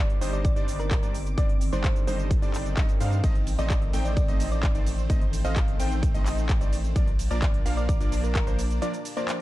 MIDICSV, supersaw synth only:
0, 0, Header, 1, 2, 480
1, 0, Start_track
1, 0, Tempo, 465116
1, 1421, Time_signature, 4, 2, 24, 8
1, 9717, End_track
2, 0, Start_track
2, 0, Title_t, "Supersaw synth"
2, 0, Program_c, 0, 81
2, 0, Note_on_c, 0, 55, 96
2, 0, Note_on_c, 0, 62, 88
2, 0, Note_on_c, 0, 63, 88
2, 0, Note_on_c, 0, 72, 91
2, 0, Note_on_c, 0, 74, 107
2, 192, Note_off_c, 0, 55, 0
2, 192, Note_off_c, 0, 62, 0
2, 192, Note_off_c, 0, 63, 0
2, 192, Note_off_c, 0, 72, 0
2, 192, Note_off_c, 0, 74, 0
2, 221, Note_on_c, 0, 55, 99
2, 221, Note_on_c, 0, 62, 93
2, 221, Note_on_c, 0, 63, 86
2, 221, Note_on_c, 0, 72, 89
2, 221, Note_on_c, 0, 75, 107
2, 552, Note_off_c, 0, 55, 0
2, 552, Note_off_c, 0, 62, 0
2, 552, Note_off_c, 0, 63, 0
2, 552, Note_off_c, 0, 72, 0
2, 552, Note_off_c, 0, 75, 0
2, 580, Note_on_c, 0, 63, 93
2, 580, Note_on_c, 0, 72, 90
2, 580, Note_on_c, 0, 74, 103
2, 581, Note_on_c, 0, 55, 97
2, 581, Note_on_c, 0, 62, 92
2, 1032, Note_off_c, 0, 55, 0
2, 1032, Note_off_c, 0, 62, 0
2, 1032, Note_off_c, 0, 63, 0
2, 1032, Note_off_c, 0, 72, 0
2, 1032, Note_off_c, 0, 74, 0
2, 1060, Note_on_c, 0, 55, 86
2, 1060, Note_on_c, 0, 72, 76
2, 1060, Note_on_c, 0, 74, 89
2, 1061, Note_on_c, 0, 62, 80
2, 1061, Note_on_c, 0, 63, 76
2, 1185, Note_off_c, 0, 55, 0
2, 1185, Note_off_c, 0, 62, 0
2, 1185, Note_off_c, 0, 63, 0
2, 1185, Note_off_c, 0, 72, 0
2, 1185, Note_off_c, 0, 74, 0
2, 1421, Note_on_c, 0, 55, 99
2, 1421, Note_on_c, 0, 62, 89
2, 1421, Note_on_c, 0, 63, 87
2, 1421, Note_on_c, 0, 72, 87
2, 1421, Note_on_c, 0, 74, 104
2, 1546, Note_off_c, 0, 55, 0
2, 1546, Note_off_c, 0, 62, 0
2, 1546, Note_off_c, 0, 63, 0
2, 1546, Note_off_c, 0, 72, 0
2, 1546, Note_off_c, 0, 74, 0
2, 1780, Note_on_c, 0, 72, 92
2, 1781, Note_on_c, 0, 55, 96
2, 1781, Note_on_c, 0, 62, 91
2, 1781, Note_on_c, 0, 63, 88
2, 1781, Note_on_c, 0, 74, 109
2, 2112, Note_off_c, 0, 55, 0
2, 2112, Note_off_c, 0, 62, 0
2, 2112, Note_off_c, 0, 63, 0
2, 2112, Note_off_c, 0, 72, 0
2, 2112, Note_off_c, 0, 74, 0
2, 2140, Note_on_c, 0, 55, 100
2, 2140, Note_on_c, 0, 62, 88
2, 2140, Note_on_c, 0, 63, 93
2, 2140, Note_on_c, 0, 72, 87
2, 2140, Note_on_c, 0, 75, 105
2, 2472, Note_off_c, 0, 55, 0
2, 2472, Note_off_c, 0, 62, 0
2, 2472, Note_off_c, 0, 63, 0
2, 2472, Note_off_c, 0, 72, 0
2, 2472, Note_off_c, 0, 75, 0
2, 2500, Note_on_c, 0, 55, 99
2, 2500, Note_on_c, 0, 62, 90
2, 2501, Note_on_c, 0, 63, 91
2, 2501, Note_on_c, 0, 72, 90
2, 2501, Note_on_c, 0, 74, 111
2, 2836, Note_off_c, 0, 62, 0
2, 2837, Note_off_c, 0, 55, 0
2, 2837, Note_off_c, 0, 63, 0
2, 2837, Note_off_c, 0, 72, 0
2, 2837, Note_off_c, 0, 74, 0
2, 2861, Note_on_c, 0, 55, 93
2, 2861, Note_on_c, 0, 62, 86
2, 2861, Note_on_c, 0, 63, 86
2, 2861, Note_on_c, 0, 72, 85
2, 2861, Note_on_c, 0, 75, 106
2, 2985, Note_off_c, 0, 75, 0
2, 2986, Note_off_c, 0, 55, 0
2, 2986, Note_off_c, 0, 62, 0
2, 2986, Note_off_c, 0, 63, 0
2, 2986, Note_off_c, 0, 72, 0
2, 3101, Note_on_c, 0, 55, 93
2, 3101, Note_on_c, 0, 62, 84
2, 3101, Note_on_c, 0, 63, 83
2, 3101, Note_on_c, 0, 72, 84
2, 3101, Note_on_c, 0, 77, 100
2, 3300, Note_off_c, 0, 55, 0
2, 3300, Note_off_c, 0, 62, 0
2, 3300, Note_off_c, 0, 63, 0
2, 3300, Note_off_c, 0, 72, 0
2, 3300, Note_off_c, 0, 77, 0
2, 3341, Note_on_c, 0, 57, 95
2, 3341, Note_on_c, 0, 60, 86
2, 3341, Note_on_c, 0, 63, 87
2, 3341, Note_on_c, 0, 72, 85
2, 3341, Note_on_c, 0, 75, 103
2, 3465, Note_off_c, 0, 72, 0
2, 3466, Note_off_c, 0, 57, 0
2, 3466, Note_off_c, 0, 60, 0
2, 3466, Note_off_c, 0, 63, 0
2, 3466, Note_off_c, 0, 75, 0
2, 3701, Note_on_c, 0, 57, 98
2, 3701, Note_on_c, 0, 60, 91
2, 3701, Note_on_c, 0, 63, 92
2, 3701, Note_on_c, 0, 72, 86
2, 3701, Note_on_c, 0, 75, 104
2, 4032, Note_off_c, 0, 57, 0
2, 4032, Note_off_c, 0, 60, 0
2, 4032, Note_off_c, 0, 63, 0
2, 4032, Note_off_c, 0, 72, 0
2, 4032, Note_off_c, 0, 75, 0
2, 4061, Note_on_c, 0, 57, 97
2, 4061, Note_on_c, 0, 60, 92
2, 4061, Note_on_c, 0, 63, 91
2, 4061, Note_on_c, 0, 72, 93
2, 4061, Note_on_c, 0, 79, 108
2, 4392, Note_off_c, 0, 57, 0
2, 4392, Note_off_c, 0, 60, 0
2, 4392, Note_off_c, 0, 63, 0
2, 4392, Note_off_c, 0, 72, 0
2, 4392, Note_off_c, 0, 79, 0
2, 4421, Note_on_c, 0, 57, 95
2, 4421, Note_on_c, 0, 60, 90
2, 4421, Note_on_c, 0, 63, 86
2, 4421, Note_on_c, 0, 72, 91
2, 4421, Note_on_c, 0, 75, 106
2, 4872, Note_off_c, 0, 57, 0
2, 4872, Note_off_c, 0, 60, 0
2, 4872, Note_off_c, 0, 63, 0
2, 4872, Note_off_c, 0, 72, 0
2, 4872, Note_off_c, 0, 75, 0
2, 4901, Note_on_c, 0, 57, 82
2, 4901, Note_on_c, 0, 63, 77
2, 4901, Note_on_c, 0, 72, 75
2, 4901, Note_on_c, 0, 74, 91
2, 4902, Note_on_c, 0, 60, 79
2, 5026, Note_off_c, 0, 57, 0
2, 5026, Note_off_c, 0, 60, 0
2, 5026, Note_off_c, 0, 63, 0
2, 5026, Note_off_c, 0, 72, 0
2, 5026, Note_off_c, 0, 74, 0
2, 5261, Note_on_c, 0, 57, 96
2, 5261, Note_on_c, 0, 60, 87
2, 5261, Note_on_c, 0, 63, 88
2, 5261, Note_on_c, 0, 72, 85
2, 5262, Note_on_c, 0, 75, 104
2, 5386, Note_off_c, 0, 57, 0
2, 5386, Note_off_c, 0, 60, 0
2, 5386, Note_off_c, 0, 63, 0
2, 5386, Note_off_c, 0, 72, 0
2, 5386, Note_off_c, 0, 75, 0
2, 5621, Note_on_c, 0, 57, 98
2, 5621, Note_on_c, 0, 60, 89
2, 5621, Note_on_c, 0, 63, 93
2, 5621, Note_on_c, 0, 72, 91
2, 5621, Note_on_c, 0, 75, 106
2, 5952, Note_off_c, 0, 57, 0
2, 5952, Note_off_c, 0, 60, 0
2, 5952, Note_off_c, 0, 63, 0
2, 5952, Note_off_c, 0, 72, 0
2, 5952, Note_off_c, 0, 75, 0
2, 5981, Note_on_c, 0, 57, 95
2, 5981, Note_on_c, 0, 60, 92
2, 5981, Note_on_c, 0, 63, 94
2, 5981, Note_on_c, 0, 72, 93
2, 5981, Note_on_c, 0, 79, 109
2, 6312, Note_off_c, 0, 57, 0
2, 6312, Note_off_c, 0, 60, 0
2, 6312, Note_off_c, 0, 63, 0
2, 6312, Note_off_c, 0, 72, 0
2, 6312, Note_off_c, 0, 79, 0
2, 6341, Note_on_c, 0, 57, 101
2, 6341, Note_on_c, 0, 60, 92
2, 6341, Note_on_c, 0, 63, 93
2, 6341, Note_on_c, 0, 72, 86
2, 6341, Note_on_c, 0, 75, 110
2, 6792, Note_off_c, 0, 57, 0
2, 6792, Note_off_c, 0, 60, 0
2, 6792, Note_off_c, 0, 63, 0
2, 6792, Note_off_c, 0, 72, 0
2, 6792, Note_off_c, 0, 75, 0
2, 6820, Note_on_c, 0, 60, 75
2, 6820, Note_on_c, 0, 63, 74
2, 6821, Note_on_c, 0, 57, 88
2, 6821, Note_on_c, 0, 72, 73
2, 6821, Note_on_c, 0, 74, 92
2, 6945, Note_off_c, 0, 57, 0
2, 6945, Note_off_c, 0, 60, 0
2, 6945, Note_off_c, 0, 63, 0
2, 6945, Note_off_c, 0, 72, 0
2, 6945, Note_off_c, 0, 74, 0
2, 7181, Note_on_c, 0, 53, 98
2, 7181, Note_on_c, 0, 58, 92
2, 7181, Note_on_c, 0, 62, 91
2, 7181, Note_on_c, 0, 70, 90
2, 7181, Note_on_c, 0, 74, 106
2, 7306, Note_off_c, 0, 53, 0
2, 7306, Note_off_c, 0, 58, 0
2, 7306, Note_off_c, 0, 62, 0
2, 7306, Note_off_c, 0, 70, 0
2, 7306, Note_off_c, 0, 74, 0
2, 7541, Note_on_c, 0, 53, 98
2, 7541, Note_on_c, 0, 58, 91
2, 7541, Note_on_c, 0, 62, 90
2, 7541, Note_on_c, 0, 70, 91
2, 7541, Note_on_c, 0, 74, 105
2, 7872, Note_off_c, 0, 53, 0
2, 7872, Note_off_c, 0, 58, 0
2, 7872, Note_off_c, 0, 62, 0
2, 7872, Note_off_c, 0, 70, 0
2, 7872, Note_off_c, 0, 74, 0
2, 7901, Note_on_c, 0, 53, 94
2, 7901, Note_on_c, 0, 58, 90
2, 7901, Note_on_c, 0, 62, 88
2, 7901, Note_on_c, 0, 70, 93
2, 7901, Note_on_c, 0, 77, 107
2, 8232, Note_off_c, 0, 53, 0
2, 8232, Note_off_c, 0, 58, 0
2, 8232, Note_off_c, 0, 62, 0
2, 8232, Note_off_c, 0, 70, 0
2, 8232, Note_off_c, 0, 77, 0
2, 8261, Note_on_c, 0, 58, 88
2, 8261, Note_on_c, 0, 62, 86
2, 8261, Note_on_c, 0, 70, 91
2, 8262, Note_on_c, 0, 53, 98
2, 8262, Note_on_c, 0, 74, 105
2, 8712, Note_off_c, 0, 53, 0
2, 8712, Note_off_c, 0, 58, 0
2, 8712, Note_off_c, 0, 62, 0
2, 8712, Note_off_c, 0, 70, 0
2, 8712, Note_off_c, 0, 74, 0
2, 8742, Note_on_c, 0, 53, 85
2, 8742, Note_on_c, 0, 58, 78
2, 8742, Note_on_c, 0, 62, 75
2, 8742, Note_on_c, 0, 70, 78
2, 8742, Note_on_c, 0, 72, 88
2, 8866, Note_off_c, 0, 53, 0
2, 8866, Note_off_c, 0, 58, 0
2, 8866, Note_off_c, 0, 62, 0
2, 8866, Note_off_c, 0, 70, 0
2, 8866, Note_off_c, 0, 72, 0
2, 9101, Note_on_c, 0, 58, 88
2, 9101, Note_on_c, 0, 62, 88
2, 9102, Note_on_c, 0, 53, 96
2, 9102, Note_on_c, 0, 70, 85
2, 9102, Note_on_c, 0, 74, 104
2, 9226, Note_off_c, 0, 53, 0
2, 9226, Note_off_c, 0, 58, 0
2, 9226, Note_off_c, 0, 62, 0
2, 9226, Note_off_c, 0, 70, 0
2, 9226, Note_off_c, 0, 74, 0
2, 9462, Note_on_c, 0, 53, 96
2, 9462, Note_on_c, 0, 58, 90
2, 9462, Note_on_c, 0, 62, 89
2, 9462, Note_on_c, 0, 70, 91
2, 9462, Note_on_c, 0, 74, 105
2, 9717, Note_off_c, 0, 53, 0
2, 9717, Note_off_c, 0, 58, 0
2, 9717, Note_off_c, 0, 62, 0
2, 9717, Note_off_c, 0, 70, 0
2, 9717, Note_off_c, 0, 74, 0
2, 9717, End_track
0, 0, End_of_file